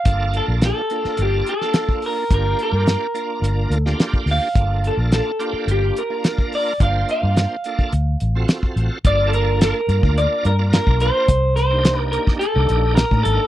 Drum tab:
HH |x-x-x-x-x-x-x-o-|x-x-x-x-x-x-x-o-|x-x-x-x-x-x-x-o-|x-x-x-x-x-x-x-x-|
SD |----o--o---oo---|----o------oo---|----o-------o---|----o-------o---|
BD |o------------o--|o------------o--|o------------o--|o------o-----o--|

HH |x-x-x-x-x-x-x-x-|x-x-x-x-x-x-x-x-|
SD |----o-------o---|--o-o--o----o---|
BD |o------o-----o--|o------o-----o--|